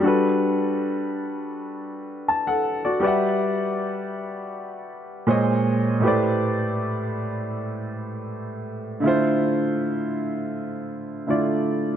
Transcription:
\new Staff \with { instrumentName = "Grand piano" } { \time 4/4 \key g \major \tempo 4 = 80 << { r2. a''16 <a' fis''>8 <fis' d''>16~ | <fis' d''>16 r2. r8. | r1 | r1 | } \\ { <g d' fis' a' b'>2.~ <g d' fis' a' b'>8 r8 | <g g' b' d'' e'' fis''>2. <bes, aes c'' des'' ees''>4 | <a, a g' b' c'' d''>1 | <d a e' f' c''>2. <d a e' f' d''>4 | } >> }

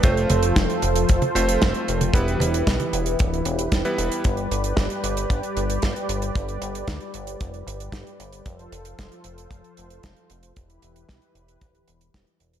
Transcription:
<<
  \new Staff \with { instrumentName = "Analog synth pad" } { \time 4/4 \key g \mixolydian \tempo 4 = 114 << { <f f' c''>1 | <e e' b'>1 | <g d''>1~ | <g d''>1 |
<f f' c''>1 | <e e' b'>1 | } \\ { a'1 | g'1~ | g'1~ | g'1 |
a'1 | g'1 | } >> }
  \new Staff \with { instrumentName = "Electric grand piano" } { \time 4/4 \key g \mixolydian <a c' f' c''>2~ <a c' f' c''>8 <a c' f' c''>4. | <g b e' b'>2~ <g b e' b'>8 r8. <g b e' b'>8. | r1 | r1 |
r1 | r1 | }
  \new Staff \with { instrumentName = "Analog synth bass" } { \clef bass \time 4/4 \key g \mixolydian f,,8 f,,8 f,,8 f,,8 f,,8 f,,8 f,,8 f,,8 | e,,8 e,,8 b,,8 e,,8 d,,8 e,,8 e,,8 e,,8 | g,,8 g,,8 g,,8 g,,8 g,,8 g,,8 g,,8 g,,8 | g,,8 g,,8 d,8 g,,8 f,,8 g,,8 g,,8 g,,8 |
f,,8 f,,8 f,,8 f,,8 f,,8 f,,8 f,,8 f,,8 | e,,8 e,,8 b,,8 e,,8 d,,8 e,,8 e,,8 e,,8 | }
  \new DrumStaff \with { instrumentName = "Drums" } \drummode { \time 4/4 <hh bd>16 hh16 <hh tommh>16 hh16 <hh bd sn>16 hh16 hh16 hh16 <hh bd>16 <hh tommh>16 hh16 hh16 <hh bd sn>16 hh16 hh16 <hh tommh>16 | <hh bd>16 hh16 <hh tommh>16 hh16 <hh bd sn>16 <hh tommh>16 hh16 hh16 <hh bd>16 hh16 hh16 hh16 <hh bd sn>16 hh16 hh16 hh16 | <hh bd>16 hh16 hh16 hh16 <hh bd sn>16 hh16 hh16 hh16 <hh bd>16 hh16 hh16 hh16 <hh bd sn>16 hh16 hh16 hh16 | <hh bd>16 hh16 hh16 hh16 <hh bd sn>16 hh16 hh16 hh16 <hh bd>16 hh16 hh16 hh16 <hh bd sn>16 hh16 hh16 hh16 |
<hh bd>16 hh16 hh16 hh16 <hh bd sn>16 hh16 hh16 hh16 <hh bd>16 hh16 hh16 hh16 <hh bd sn>16 hh16 hh16 hh16 | <hh bd>16 hh16 hh16 hh16 <hh bd sn>16 hh16 hh16 hh16 <hh bd>16 hh16 hh16 hh16 <hh bd sn>16 hh16 hh16 hh16 | }
>>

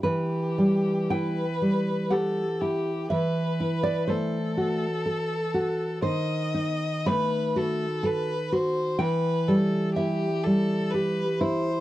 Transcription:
<<
  \new Staff \with { instrumentName = "Violin" } { \time 3/4 \key e \minor \tempo 4 = 62 g'4 b'4 a'8 g'8 | b'4 a'2 | dis''4 b'8 a'8 b'8 bis'8 | b'8 a'8 g'8 a'8 b'8 c''8 | }
  \new Staff \with { instrumentName = "Nylon-string guitar" } { \time 3/4 \key e \minor << { b'4 g''4 fis''4 | e''8. d''16 c''4. r8 | bis'4 b''4 a''4 | g''4 e''4. r8 | } \\ { e8 g8 e'8 g8 g'8 e'8 | e8 e'8 a8 fis'8 a'8 fis'8 | dis8 dis'8 a8 fis'8 a'8 fis'8 | e8 g8 e'8 g8 g'8 e'8 | } >> }
>>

